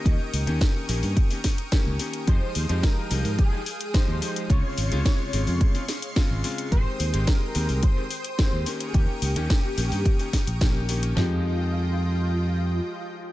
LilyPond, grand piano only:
\new Staff \with { instrumentName = "Grand piano" } { \time 4/4 \key f \minor \tempo 4 = 108 <ees bes des' g'>8. <ees bes des' g'>8. <ees bes des' g'>8. <ees bes des' g'>16 r8 <ees bes des' g'>8 <ees bes des' g'>8 | <f aes ees' g'>8. <f aes ees' g'>8. <f aes ees' g'>8. <f aes ees' g'>16 r8 <f aes ees' g'>8 <f aes ees' g'>8 | <c des aes f'>8. <c des aes f'>8. <c des aes f'>8. <des aes c' f'>16 r8 <des aes c' f'>8 <des aes c' f'>8 | <ees aes c' g'>8. <ees aes c' g'>8. <ees aes c' g'>8. <ees aes c' g'>16 r8 <ees aes c' g'>8 <ees bes des' g'>8 |
<ees bes des' g'>8. <ees bes des' g'>8. <ees bes des' g'>8. <ees bes des' g'>16 r8 <ees bes des' g'>8 <ees bes des' g'>8 | <f aes ees' g'>1 | }